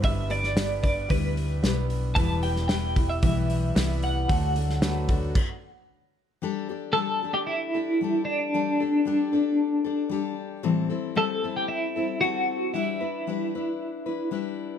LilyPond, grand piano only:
\new Staff \with { instrumentName = "Grand piano" } { \time 4/4 \key g \major \tempo 4 = 114 << { <g b d' b'>8. r16 <g b d' b'>8. r16 <g b d' e'>8. r16 <g b d' b'>8. r16 | <g b e' b'>8. r16 <g b e' b'>8. r16 <g b e'>8. r16 <g b e' b'>8. r16 | <fis a d' a'>8. r16 <fis a d' b'>8. r2 r16 | r1 |
r1 | r1 | r1 | } \\ { <g,, g,>1 | <e, e>1 | <d, d>2 r2 | r1 |
r1 | r1 | r1 | } >> }